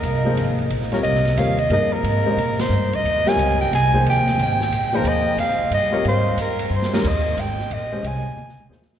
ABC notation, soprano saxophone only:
X:1
M:3/4
L:1/8
Q:"Swing" 1/4=180
K:Ab
V:1 name="Soprano saxophone"
B3 z2 B | e2 f e e B- | B3 c2 e- | e a2 g a2 |
g2 g3 B | e2 f2 e2 | c2 B2 c B | e2 g2 e2 |
a4- a z |]